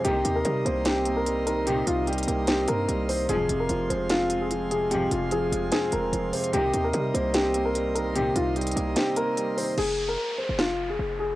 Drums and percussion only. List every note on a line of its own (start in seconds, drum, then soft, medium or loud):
0.05 closed hi-hat medium
0.25 closed hi-hat medium
0.45 closed hi-hat medium
0.66 closed hi-hat medium
0.85 snare loud
0.85 closed hi-hat medium
1.06 closed hi-hat medium
1.26 closed hi-hat medium
1.47 closed hi-hat medium
1.67 closed hi-hat medium
1.87 closed hi-hat medium
2.07 closed hi-hat soft
2.13 closed hi-hat medium
2.18 closed hi-hat medium
2.23 closed hi-hat medium
2.28 closed hi-hat medium
2.47 snare loud
2.47 closed hi-hat medium
2.68 closed hi-hat medium
2.89 closed hi-hat medium
3.09 open hi-hat medium
3.29 closed hi-hat medium
3.49 closed hi-hat medium
3.69 closed hi-hat medium
3.90 closed hi-hat medium
4.10 snare loud
4.10 closed hi-hat medium
4.30 closed hi-hat medium
4.51 closed hi-hat medium
4.71 closed hi-hat medium
4.91 closed hi-hat medium
5.11 closed hi-hat medium
5.31 closed hi-hat medium
5.53 closed hi-hat medium
5.72 snare loud
5.72 closed hi-hat loud
5.92 closed hi-hat medium
6.13 closed hi-hat medium
6.33 closed hi-hat medium
6.33 open hi-hat medium
6.44 closed hi-hat medium
6.53 closed hi-hat medium
6.74 closed hi-hat medium
6.93 closed hi-hat medium
7.15 closed hi-hat medium
7.34 snare loud
7.34 closed hi-hat medium
7.54 closed hi-hat medium
7.75 closed hi-hat medium
7.96 closed hi-hat medium
8.16 closed hi-hat medium
8.36 closed hi-hat medium
8.56 closed hi-hat soft
8.61 closed hi-hat medium
8.67 closed hi-hat medium
8.72 closed hi-hat medium
8.77 closed hi-hat medium
8.96 snare loud
8.96 closed hi-hat medium
9.16 closed hi-hat medium
9.37 closed hi-hat medium
9.58 open hi-hat medium
9.78 crash medium
10.59 snare loud